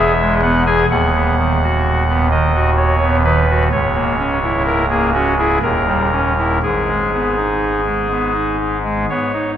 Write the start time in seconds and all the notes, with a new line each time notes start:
Already playing: E1 E2 G#4 E5
0.20 G#3
0.42 B3 F#5
0.66 G#4 G#5
0.90 D#1 D#2 F#5
1.15 B3
1.38 D#3
1.63 F#4
2.08 B3
2.31 D#3 D#5
2.54 F#4
2.77 C#5
3.02 B3
3.24 D#3 B4
3.50 F#4
3.72 C#1 C#2 C#5
3.95 A#3
4.18 C#4
4.43 E4
4.66 A#4
4.90 A#3 G#4
5.14 C#4 F#4
5.39 E4 G#4
5.63 D#1 D#2 A#4
5.87 G3
6.11 C#4
6.38 E4
6.62 G#1 G#2 G#4
6.88 G#3
7.13 B3
7.37 D#4
7.85 G#3
8.11 B3
8.34 D#4
8.84 G#3
9.09 B3 C#5
9.33 D#4